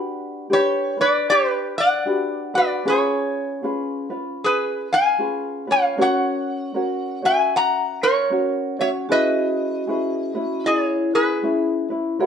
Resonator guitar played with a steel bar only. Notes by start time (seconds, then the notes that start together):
0.53 G4 C#5
1.01 B4 D5
1.30 G4 B4
1.78 D5 F#5
2.55 B4 D5
2.88 G#4 C#5
4.44 G#4 B4
4.93 F5 G#5
5.71 C#5 F5
6.01 C#5 F#5
7.25 E5 G#5
7.56 F#5 A#5
8.03 A#4 C#5
8.81 C#5 E5
9.12 B4 D#5
10.66 G#4 D5
10.85 C#5
11.15 G#4 B4